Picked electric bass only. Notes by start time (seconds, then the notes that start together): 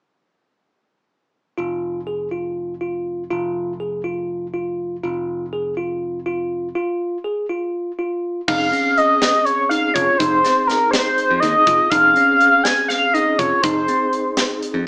1.58 F1
3.31 F1
5.04 F1
8.48 F1
9.96 F1
10.20 F1
11.31 F2
11.43 D#2
11.67 F1
11.91 F1
13.39 F1
13.64 F1
14.74 F2